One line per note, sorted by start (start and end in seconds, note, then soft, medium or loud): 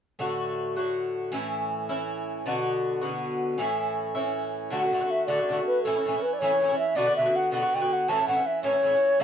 0.19 0.76 A2 medium
0.19 0.76 D3 medium
0.19 0.76 A3 medium
0.19 0.75 F#4 medium
0.76 1.31 A2 medium
0.76 1.32 D3 medium
0.76 1.33 A3 medium
0.76 1.33 F#4 medium
1.32 1.89 A2 medium
1.32 1.89 E3 medium
1.32 1.88 C#4 medium
1.32 1.88 E4 medium
1.89 2.45 A2 soft
1.89 2.46 E3 soft
1.89 2.46 C#4 medium
1.89 2.46 E4 medium
2.46 3.02 B2 medium
2.46 3.02 D3 medium
2.46 3.01 B3 medium
2.46 3.00 F#4 medium
3.01 3.57 B2 medium
3.01 3.59 D3 medium
3.01 3.59 B3 medium
3.01 3.58 F#4 medium
3.58 4.15 A2 medium
3.58 4.15 E3 medium
3.58 4.14 C#4 medium
3.58 4.14 E4 medium
4.15 4.69 A2 medium
4.15 4.71 E3 medium
4.15 4.72 C#4 medium
4.15 4.71 E4 medium
4.70 4.81 A2 medium
4.70 4.82 D3 medium
4.70 4.82 A3 medium
4.70 4.81 F#4 medium
4.70 5.12 F#5 medium
4.82 4.91 D3 soft
4.82 4.92 A3 soft
4.82 4.92 F#4 soft
4.91 5.00 A2 soft
4.91 5.01 D3 medium
4.91 5.01 A3 medium
4.91 5.00 F#4 medium
5.01 5.27 D3 soft
5.01 5.28 A3 soft
5.01 5.28 F#4 soft
5.11 5.26 E5 medium
5.27 5.38 A2 medium
5.27 5.38 D3 medium
5.27 5.39 A3 medium
5.27 5.38 F#4 medium
5.27 5.63 D5 medium
5.39 5.49 D3 soft
5.39 5.50 A3 soft
5.39 5.49 F#4 soft
5.49 5.58 A2 soft
5.49 5.58 D3 medium
5.49 5.59 A3 medium
5.49 5.57 F#4 medium
5.58 5.85 D3 soft
5.58 5.86 A3 soft
5.58 5.84 F#4 soft
5.67 5.83 B4 medium
5.83 5.95 A2 medium
5.83 5.95 E3 medium
5.83 5.96 C#4 medium
5.83 5.95 E4 medium
5.83 6.24 A4 medium
5.96 6.06 E3 soft
5.96 6.06 C#4 soft
5.96 6.06 E4 soft
6.06 6.14 A2 medium
6.06 6.15 E3 medium
6.06 6.16 C#4 medium
6.06 6.15 E4 soft
6.16 6.41 E3 soft
6.16 6.42 C#4 soft
6.16 6.41 E4 soft
6.22 6.35 B4 medium
6.33 6.41 D5 medium
6.39 6.51 A2 medium
6.39 6.51 E3 medium
6.39 6.78 C#5 medium
6.43 6.51 C#4 medium
6.43 6.49 E4 medium
6.50 6.61 E3 soft
6.50 6.62 C#4 soft
6.50 6.61 E4 soft
6.60 6.69 A2 soft
6.60 6.70 E3 medium
6.60 6.70 C#4 medium
6.65 6.68 E4 medium
6.69 6.96 E3 soft
6.69 6.97 C#4 soft
6.69 6.96 E4 soft
6.79 6.98 E5 medium
6.95 7.06 B2 medium
6.95 7.07 D3 medium
6.95 7.07 B3 medium
6.95 7.05 F#4 medium
6.95 7.16 D5 loud
7.07 7.18 D3 soft
7.07 7.18 B3 soft
7.07 7.17 F#4 soft
7.16 7.26 B2 medium
7.16 7.27 D3 medium
7.16 7.37 E5 medium
7.20 7.26 B3 medium
7.20 7.24 F#4 medium
7.26 7.51 D3 soft
7.26 7.52 B3 soft
7.26 7.52 F#4 medium
7.36 7.53 F#5 medium
7.51 7.62 B2 medium
7.51 7.63 D3 medium
7.51 7.63 B3 medium
7.51 7.61 F#4 medium
7.51 7.76 F#5 medium
7.62 7.73 D3 soft
7.62 7.74 B3 soft
7.62 7.73 F#4 soft
7.73 7.82 B2 medium
7.73 7.83 D3 medium
7.73 7.82 B3 medium
7.73 7.80 F#4 medium
7.73 7.94 G5 medium
7.81 8.09 D3 soft
7.81 8.09 B3 soft
7.81 8.08 F#4 medium
7.93 8.10 F#5 medium
8.08 8.19 A2 medium
8.08 8.19 E3 medium
8.08 8.19 C#4 medium
8.08 8.17 E4 medium
8.08 8.28 A5 loud
8.19 8.27 E3 soft
8.19 8.28 C#4 soft
8.19 8.29 E4 soft
8.27 8.37 A2 medium
8.27 8.38 E3 medium
8.27 8.37 C#4 medium
8.27 8.35 E4 medium
8.27 8.43 F#5 medium
8.36 8.63 E3 soft
8.36 8.63 C#4 soft
8.36 8.64 E4 soft
8.43 8.63 E5 medium
8.43 8.48 F#5 medium
8.63 8.74 A2 medium
8.63 8.75 E3 medium
8.63 8.73 C#4 medium
8.63 8.71 E4 medium
8.63 9.23 C#5 medium
8.72 8.83 E3 soft
8.72 8.84 C#4 soft
8.72 8.84 E4 soft
8.83 8.93 A2 medium
8.83 8.93 E3 soft
8.83 8.92 C#4 soft
8.83 8.90 E4 medium
8.91 9.20 E3 soft
8.91 9.20 C#4 soft
8.91 9.19 E4 soft
9.20 9.24 A2 medium
9.20 9.24 D3 medium